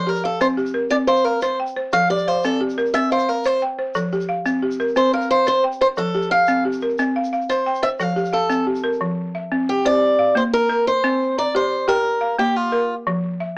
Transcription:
0.00 0.24 F3 medium
0.00 0.41 A4 medium
0.07 0.56 G4 medium
0.07 0.24 A#4 medium
0.15 shaker soft
0.24 0.41 A4 medium
0.24 0.74 F5 medium
0.32 shaker soft
0.40 0.75 C4 medium
0.40 0.46 C5 medium
0.40 shaker medium
0.57 1.08 G4 medium
0.57 shaker soft
0.66 shaker soft
0.74 1.08 A#4 medium
0.90 1.25 C4 medium
0.90 0.95 D5 loud
0.90 shaker medium
1.07 1.24 C5 medium
1.07 1.24 F5 medium
1.07 shaker soft
1.16 shaker medium
1.24 1.42 A#4 medium
1.24 1.76 F5 medium
1.41 1.58 C5 medium
1.41 1.75 C5 medium
1.41 shaker medium
1.60 2.10 G5 medium
1.66 shaker soft
1.76 2.10 C5 medium
1.92 2.26 F3 medium
1.92 2.43 A4 medium
1.92 2.09 F5 loud
1.92 shaker medium
2.09 2.59 G4 medium
2.09 2.28 D5 medium
2.09 shaker soft
2.18 shaker soft
2.27 2.45 C5 medium
2.27 2.78 F5 medium
2.43 2.78 C4 medium
2.43 2.61 A4 medium
2.43 shaker medium
2.61 3.11 G4 medium
2.69 shaker medium
2.78 3.11 A#4 medium
2.78 shaker soft
2.86 shaker soft
2.94 3.28 C4 medium
2.94 3.10 E5 loud
2.94 shaker medium
3.10 3.29 C5 medium
3.10 3.27 F5 medium
3.10 shaker soft
3.19 shaker medium
3.28 3.46 A#4 medium
3.28 3.79 F5 medium
3.44 3.77 C5 medium
3.44 3.62 C5 medium
3.44 shaker medium
3.62 4.13 G5 medium
3.79 4.12 C5 medium
3.95 4.29 F3 medium
3.95 4.46 A4 medium
3.95 shaker medium
4.12 4.61 G4 medium
4.12 shaker soft
4.21 shaker medium
4.29 4.80 F5 medium
4.46 4.80 C4 medium
4.46 shaker medium
4.63 5.13 G4 medium
4.71 shaker soft
4.79 5.14 A#4 medium
4.79 shaker soft
4.88 shaker soft
4.96 5.30 C4 medium
4.96 5.13 C5 medium
4.96 shaker medium
5.13 5.30 A#4 medium
5.13 5.29 F5 medium
5.13 shaker soft
5.21 shaker soft
5.30 5.46 C5 medium
5.30 5.81 F5 medium
5.46 5.80 C5 medium
5.46 5.63 C5 medium
5.46 shaker medium
5.64 6.15 G5 medium
5.72 shaker soft
5.81 6.15 C5 medium
5.81 5.86 C5 medium
5.97 6.31 F3 medium
5.97 6.48 A4 medium
5.97 6.31 A4 medium
5.97 shaker medium
6.14 6.64 G4 medium
6.14 shaker soft
6.22 shaker soft
6.31 6.63 F5 medium
6.31 6.82 F5 medium
6.47 6.82 C4 medium
6.47 shaker medium
6.65 7.16 G4 medium
6.72 shaker soft
6.81 7.16 A#4 medium
6.81 shaker soft
6.90 shaker soft
6.98 7.33 C4 medium
6.98 shaker medium
7.16 7.32 F5 medium
7.24 shaker soft
7.33 7.83 F5 medium
7.33 shaker soft
7.41 shaker soft
7.49 7.81 C5 medium
7.49 shaker medium
7.66 8.17 G5 medium
7.66 shaker soft
7.75 shaker soft
7.83 8.17 C5 medium
7.83 7.88 E5 loud
8.00 8.34 F3 medium
8.00 8.50 A4 medium
8.00 8.35 F5 loud
8.00 shaker medium
8.08 shaker soft
8.16 8.66 G4 medium
8.16 shaker soft
8.25 shaker medium
8.33 8.65 A4 medium
8.33 8.84 F5 medium
8.50 8.84 C4 medium
8.50 shaker medium
8.67 9.18 G4 medium
8.75 shaker medium
8.84 9.18 A#4 medium
8.93 shaker soft
9.01 9.35 F3 medium
9.35 9.85 E5 medium
9.51 9.84 C4 medium
9.69 9.86 G4 medium
9.85 10.02 C4 medium
9.85 10.19 C5 medium
9.85 10.37 D5 loud
10.19 10.70 F5 medium
10.35 10.69 A#3 medium
10.35 10.42 C5 medium
10.53 10.87 A#4 loud
10.69 11.03 A#4 medium
10.87 11.38 C5 medium
11.04 11.37 C4 medium
11.38 11.55 D5 medium
11.38 11.88 A#5 medium
11.55 11.86 G4 medium
11.55 11.88 C5 medium
11.88 12.05 G4 medium
11.88 12.35 A#4 medium
11.88 12.22 G5 medium
12.21 12.72 F5 medium
12.38 12.72 A#3 medium
12.38 12.56 G4 medium
12.56 12.94 F4 medium
12.72 13.06 A#4 medium
13.07 13.40 F3 medium
13.40 13.58 E5 medium

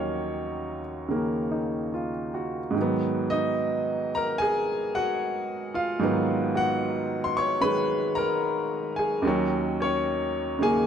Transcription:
0.00 2.74 D#2 medium
0.00 1.07 D#3 medium
0.00 2.76 F#3 soft
0.00 2.79 C#4 medium
0.00 1.51 D#4 medium
0.00 0.79 C#5 medium
0.00 2.77 D#5 loud
1.09 2.76 C#3 soft
1.09 2.73 D#3 soft
1.09 2.76 A#3 soft
1.51 2.10 D#4 soft
1.94 2.59 F4 soft
2.34 2.92 F#4 soft
2.70 5.98 G#2 medium
2.75 5.99 D#3 soft
2.75 6.01 F#3 medium
2.81 6.02 B3 medium
3.30 4.10 D#4 medium
3.30 4.15 D#5 medium
4.15 4.40 A#4 medium
4.15 4.41 A#5 medium
4.38 4.92 G#4 medium
4.38 4.96 G#5 medium
4.95 5.71 F#4 medium
4.95 5.71 F#5 medium
5.74 5.99 F4 medium
5.74 5.99 F5 medium
5.99 9.24 G#2 medium
5.99 7.59 D#3 soft
5.99 9.24 F#3 medium
6.04 9.26 B3 medium
6.55 7.23 F#4 medium
6.55 7.30 F#5 medium
7.24 7.35 C6 medium
7.37 7.62 C#5 medium
7.37 7.64 C#6 medium
7.61 9.22 D#3 soft
7.61 9.25 G#3 medium
7.61 8.13 B4 medium
7.61 8.19 B5 medium
8.15 8.95 A#4 medium
8.15 9.00 A#5 medium
8.96 9.23 G#4 medium
8.96 9.22 G#5 medium
9.22 10.87 D#2 medium
9.22 10.57 D#3 medium
9.22 10.87 F#3 medium
9.28 9.79 C#4 medium
9.80 10.57 C#4 medium
9.80 10.58 C#5 medium
10.59 10.87 C#3 soft
10.59 10.87 D#3 soft
10.59 10.87 A#3 medium
10.59 10.86 G#4 medium
10.59 10.86 G#5 medium

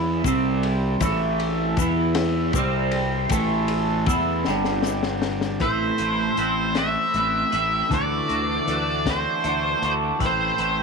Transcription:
0.00 0.21 E2 medium
0.00 0.25 E3 medium
0.00 0.24 B3 loud
0.00 0.25 B3 medium
0.00 0.25 E4 loud
0.00 0.25 B4 medium
0.00 0.24 E5 medium
0.24 0.98 C2 loud
0.24 1.00 C3 loud
0.24 1.01 G3 loud
0.24 1.02 G3 medium
0.24 1.01 C4 loud
0.24 1.02 C4 medium
0.24 1.02 C5 medium
0.24 1.02 G5 medium
0.24 kick loud
0.24 ride medium
0.24 shaker medium
0.63 ride medium
1.00 1.74 A1 loud
1.00 1.77 A2 loud
1.00 1.77 E3 loud
1.00 2.55 E3 medium
1.00 1.78 A3 loud
1.00 1.79 C4 medium
1.00 1.79 A4 medium
1.00 1.77 E5 medium
1.00 kick loud
1.00 ride medium
1.00 shaker loud
1.40 ride medium
1.77 2.51 E2 medium
1.77 2.54 E3 loud
1.77 2.54 B3 loud
1.77 2.55 B3 medium
1.77 2.55 E4 loud
1.77 2.55 B4 medium
1.77 2.54 E5 medium
1.77 kick loud
1.77 ride medium
1.77 shaker loud
2.15 snare loud
2.15 ride loud
2.53 3.27 C2 loud
2.53 3.31 C3 loud
2.53 3.31 G3 loud
2.53 3.32 G3 medium
2.53 3.31 C4 medium
2.53 3.31 C4 loud
2.53 3.31 G5 medium
2.53 4.45 C6 medium
2.53 kick loud
2.53 ride medium
2.53 shaker medium
2.91 ride medium
3.29 4.04 A1 medium
3.29 4.07 A2 loud
3.29 4.06 E3 loud
3.29 4.07 A3 loud
3.29 kick loud
3.29 ride loud
3.29 shaker loud
3.34 4.47 A3 medium
3.34 4.47 E4 medium
3.34 4.47 A5 medium
3.68 ride medium
4.06 4.43 E2 loud
4.06 4.45 E3 medium
4.06 4.45 B3 loud
4.06 4.45 E4 loud
4.06 kick loud
4.06 ride medium
4.06 shaker medium
4.45 5.57 G1 medium
4.45 5.60 G2 medium
4.45 5.60 D3 loud
4.45 5.61 G3 loud
4.45 5.61 G3 medium
4.45 5.61 D4 medium
4.45 5.61 D5 medium
4.45 snare medium
4.45 shaker soft
4.49 5.61 G5 medium
4.65 snare medium
4.83 snare medium
4.83 shaker medium
5.03 snare medium
5.22 snare loud
5.41 snare medium
5.41 shaker soft
5.60 5.90 A1 medium
5.60 6.38 A2 medium
5.60 7.90 E3 medium
5.60 6.01 A3 medium
5.60 5.99 C4 medium
5.60 5.99 E4 loud
5.60 10.16 A4 medium
5.60 5.97 B4 medium
5.60 6.78 C5 medium
5.60 10.17 E5 medium
5.60 7.88 B5 medium
5.60 kick loud
5.60 closed hi-hat medium
5.98 6.29 A1 medium
5.98 6.35 A3 medium
5.98 6.36 C4 medium
5.98 6.38 E4 medium
5.98 6.38 B4 medium
5.98 closed hi-hat medium
6.36 6.95 A1 medium
6.36 6.78 A3 medium
6.36 6.76 C4 medium
6.36 6.75 E4 medium
6.36 6.74 B4 medium
6.36 closed hi-hat medium
6.75 7.14 A3 medium
6.75 7.15 C4 medium
6.75 7.17 E4 medium
6.75 7.16 B4 medium
6.75 7.88 E5 medium
6.75 snare loud
6.75 closed hi-hat medium
7.14 7.43 A1 medium
7.14 7.53 A3 medium
7.14 7.52 C4 medium
7.14 7.52 E4 medium
7.14 7.50 B4 medium
7.14 closed hi-hat medium
7.52 7.82 A1 medium
7.52 7.91 A3 medium
7.52 7.89 C4 medium
7.52 7.92 E4 medium
7.52 7.88 B4 medium
7.52 closed hi-hat medium
7.89 8.20 D2 medium
7.89 8.67 D3 medium
7.89 8.66 E3 loud
7.89 8.30 A3 medium
7.89 8.28 D4 medium
7.89 8.27 F#4 medium
7.89 10.19 F#5 medium
7.89 10.19 D6 medium
7.89 kick loud
7.89 closed hi-hat medium
7.94 9.11 D5 loud
8.28 8.58 D2 medium
8.28 8.67 A3 medium
8.28 8.67 D4 medium
8.28 8.67 F#4 medium
8.28 closed hi-hat medium
8.66 9.25 D2 medium
8.66 9.43 E3 medium
8.66 9.08 A3 medium
8.66 9.06 D4 medium
8.66 9.06 F#4 medium
8.66 closed hi-hat medium
9.06 9.44 A3 medium
9.06 9.45 D4 medium
9.06 9.45 F#4 medium
9.06 kick medium
9.06 snare loud
9.06 closed hi-hat medium
9.10 9.90 C5 medium
9.44 9.73 D2 medium
9.44 10.19 E3 medium
9.44 9.85 A3 medium
9.44 9.83 D4 medium
9.44 9.82 F#4 medium
9.44 closed hi-hat medium
9.82 10.11 D2 medium
9.82 10.20 A3 medium
9.82 10.20 D4 medium
9.82 10.19 F#4 medium
9.82 closed hi-hat medium
10.19 10.50 A1 medium
10.19 10.83 A2 medium
10.19 10.83 E3 medium
10.19 10.61 A3 medium
10.19 10.59 C4 medium
10.19 10.59 E4 loud
10.19 10.83 A4 medium
10.19 10.57 B4 medium
10.19 10.83 B5 medium
10.19 10.83 E6 medium
10.19 kick loud
10.19 closed hi-hat medium
10.26 10.83 C5 medium
10.58 10.83 A1 medium
10.58 10.83 A3 medium
10.58 10.83 C4 medium
10.58 10.83 E4 medium
10.58 10.83 B4 medium
10.58 closed hi-hat medium

